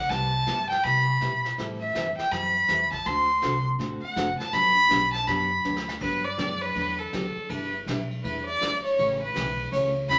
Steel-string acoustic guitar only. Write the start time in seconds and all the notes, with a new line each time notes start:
0.10 C3 G3 B3 E4 G4
0.46 C3 G3 B3 E4 G4
0.84 C3 G3 B3 E4 G4
1.21 C3 G3 B3 E4 G4
1.57 E3 G3 C4 E4 A4
1.95 E3 G3 C4 E4 A4
2.31 E3 G3 C4 E4 A4
2.68 E3 G3 C4 E4 A4
3.06 D3 A3 C4 F#4 A4
3.42 D3 A3 C4 F#4 A4
3.78 D3 A3 C4 F#4 A4
4.16 D3 A3 C4 F#4 A4
4.52 D3 F#3 B3 D4 G4
4.89 D3 F#3 B3 D4 G4
5.27 D3 F#3 B3 D4 G4
5.64 D3 F#3 B3 D4 G4
6.01 D3 F#3 B3 D4 G4
6.38 D3 F#3 B3 D4 G4
6.75 D3 F#3 B3 D4 G4
7.13 D3 F#3 B3 D4 G4
7.49 G3 D4 E4 B4
7.87 G3 D4 E4 B4
8.24 G3 D4 E4 B4
8.61 G3 D4 E4 B4
8.98 C#3 E3 A3 C#4 G4
9.34 C#3 E3 A3 C#4 G4
9.71 C#3 E3 A3 C#4 G4
10.10 C#3 E3 A3 C#4 G4